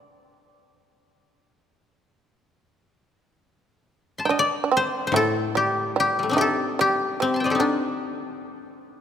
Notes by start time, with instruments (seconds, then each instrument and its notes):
Already playing: shamisen D#4, koto D5
0.27 shamisen D4
0.79 shamisen D#4
1.10 shamisen D4
4.18 koto A5 C6
4.25 shamisen D#4, koto G5
4.29 shamisen D4, koto D#5
4.39 koto D5
4.64 shamisen D4
4.72 shamisen C4
4.77 koto C5
5.07 koto C5
5.12 koto A2, shamisen A3
5.16 koto A4
5.55 shamisen G3, koto G4
5.96 shamisen G3, koto G4
6.19 koto G3
6.23 koto A3
6.29 koto C4 D4 D#4
6.37 shamisen A3, koto G4
6.41 koto A4
6.79 shamisen G3, koto G4
7.20 shamisen C3, koto C4
7.34 koto A5 C6
7.40 koto D#5 G5
7.45 shamisen A2, koto C5 D5
7.50 koto G4 A4
7.55 koto D#4
7.60 shamisen D3, koto D4